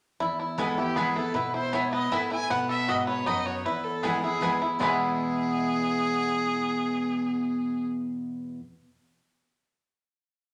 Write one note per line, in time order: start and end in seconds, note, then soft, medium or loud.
0.20 0.93 E2 medium
0.20 0.38 E4 medium
0.39 0.77 E4 soft
0.58 0.77 E3 medium
0.58 0.77 G#3 medium
0.58 0.68 B3 medium
0.58 0.96 B3 medium
0.58 0.78 B3 loud
0.58 0.68 E4 medium
0.58 0.76 E4 medium
0.58 0.80 A4 medium
0.58 0.68 B4 loud
0.58 0.68 G#5 medium
0.77 0.97 B3 soft
0.77 0.96 E4 medium
0.77 1.15 E4 medium
0.77 0.98 G4 medium
0.96 1.16 E3 medium
0.96 1.16 G#3 medium
0.96 1.92 B3 medium
0.96 1.06 B3 medium
0.96 1.16 B3 medium
0.96 1.06 E4 medium
0.96 1.15 E4 medium
0.96 1.17 G#4 medium
0.96 1.06 B4 medium
0.96 1.07 G#5 medium
1.16 1.35 B3 medium
1.16 1.34 E4 medium
1.16 1.33 E4 medium
1.16 1.36 A4 medium
1.34 2.07 B2 loud
1.34 1.53 E4 medium
1.34 1.54 B4 medium
1.54 1.72 E4 medium
1.54 1.75 C5 medium
1.73 2.10 G#2 medium
1.73 1.82 B3 medium
1.73 2.11 E4 medium
1.73 1.83 E4 medium
1.73 1.83 B4 loud
1.73 1.92 C#5 medium
1.73 1.83 G#5 medium
1.92 2.50 B3 medium
1.92 2.13 D#5 loud
2.12 2.48 A2 medium
2.12 2.21 B3 medium
2.12 2.21 E4 medium
2.12 2.30 E4 medium
2.12 2.21 B4 loud
2.12 2.31 E5 medium
2.12 2.21 G#5 loud
2.31 2.50 E4 medium
2.31 2.52 G#5 loud
2.50 3.23 B2 medium
2.50 3.07 B3 medium
2.50 2.69 F#5 loud
2.69 3.23 A4 medium
2.69 2.90 E5 loud
2.88 3.25 G#2 medium
2.88 2.98 B3 loud
2.88 3.42 F#4 medium
2.88 2.98 F#4 medium
2.88 3.06 D#5 medium
2.88 2.98 D#5 loud
2.88 2.98 B5 loud
3.07 4.03 B3 medium
3.07 3.28 C#5 medium
3.26 3.63 F#2 medium
3.26 3.36 B3 medium
3.26 3.65 D#4 medium
3.26 3.36 F#4 medium
3.26 3.47 D#5 loud
3.26 3.36 D#5 medium
3.26 3.36 B5 loud
3.46 3.65 F#4 medium
3.46 3.67 C#5 medium
3.65 4.38 E2 medium
3.65 4.19 E4 medium
3.65 3.85 B4 medium
3.84 4.04 A4 medium
4.02 4.22 E3 medium
4.02 4.22 G#3 loud
4.02 4.12 B3 medium
4.02 4.41 B3 medium
4.02 4.22 B3 loud
4.02 4.13 E4 loud
4.02 4.21 E4 loud
4.02 4.21 G#4 medium
4.02 4.13 B4 medium
4.02 4.13 G#5 loud
4.22 4.41 B3 medium
4.22 4.41 E4 medium
4.22 4.61 E4 medium
4.22 4.67 G#4 medium
4.41 4.60 E3 medium
4.41 4.60 G#3 medium
4.41 4.51 B3 medium
4.41 4.80 B3 medium
4.41 4.60 B3 medium
4.41 4.51 E4 medium
4.41 4.60 E4 medium
4.41 4.51 B4 medium
4.41 4.51 G#5 medium
4.61 4.80 B3 soft
4.61 4.79 E4 medium
4.61 4.80 E4 medium
4.79 8.58 E2 medium
4.79 8.59 B2 medium
4.79 8.59 E3 medium
4.79 8.55 G#3 medium
4.79 8.59 G#3 medium
4.79 8.59 B3 medium
4.79 8.56 B3 medium
4.79 8.59 E4 loud
4.79 8.60 E4 medium
4.79 7.85 G#4 loud
4.79 8.60 B4 loud
4.79 8.60 G#5 loud
4.84 8.57 E4 medium
4.84 8.58 G#4 medium